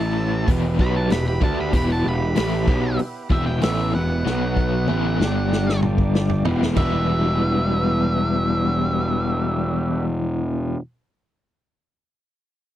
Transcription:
Already playing: A1 A2 E3 A3 E4 A4 E5 A5
0.17 A3 E4 A4 E5
0.46 E1 E2 B2 E3 B3 E4 G4 B4, kick, open hi-hat
0.76 B1 B2 F#3 B3 E4 G4 B4, kick
0.81 B5
0.94 F#4 A5
1.08 E2 B2 B3 E4 G4 B4, open hi-hat
1.12 E1 G4 B5, snare
1.27 G4 B5
1.40 D2 D3 A3 B3 D4 E4 F#4 G4 B4 A5, kick
1.57 G4 B5
1.72 E1 E2 B2 E3 B3 E4 G4 B4, kick, open hi-hat
1.76 B5
1.87 F#4
1.92 A5
2.03 E1 E2 B2 B3 E4 G4 B4
2.08 B5
2.35 A1 A2 E3 A3 B3 E4 G4 B4 B5, snare, open hi-hat
2.66 B1 B2 F#3 B3 E4 G4 B4, kick
2.97 B3 E4 G4 B4, muted overdriven electric guitar stroke, muted picked electric bass stroke, open hi-hat
3.30 E1 E2 B2 E3 B3 C4 E4 G4 B4 E5, kick
3.46 E4 G5
3.61 A1 A2 E3 A3 B3 E4 G4 B4 E5, snare, open hi-hat
3.93 E1 E2 B2 B3 E4 G4 B4 F#5
4.24 B1 B2 F#3 B3 F#4 B4, snare
4.56 F#3 B3 F#4 B4, kick
4.88 A1 A2 E3 A3 B3 E4 G4 B4, mid tom
5.19 G1 G2 D3 G3, snare
5.23 D4 G4 D5
5.53 snare
5.69 snare
5.82 G3 D4 G4 D5, mid tom
5.98 kick
6.14 G3 D4 G4 D5, snare
6.29 floor tom
6.45 E1 E2 B2 E3 B3 E4 G4 B4, floor tom
6.63 snare
6.76 E1 E3 G3 B3 D4 E4 F#4 G4 B4 E5, kick, floor tom, crash

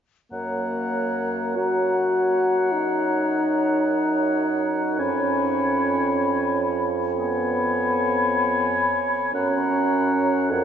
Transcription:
0.32 F#2 A#3 C#5 F#5 A#5
1.56 F#4 C#5 F#5 A#5
2.72 D#4
4.98 F2 C#4 C#5 G#5 B5
7.19 B3 C#5 G#5 B5
9.34 F#2 C#4 C#5 F#5 A#5
10.51 F2 A#4 C#5 F#5 A#5

